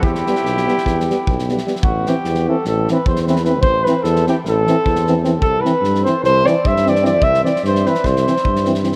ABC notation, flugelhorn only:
X:1
M:9/8
L:1/16
Q:3/8=100
K:Ador
V:1 name="Flugelhorn"
G12- G2 z4 | F2 G4 A2 A2 B2 c3/2 c/2 B2 B2 | c2 B2 A2 G2 A8 z2 | A2 B4 c2 c2 d2 e2 d2 d2 |
e2 d2 c2 B2 c8 z2 |]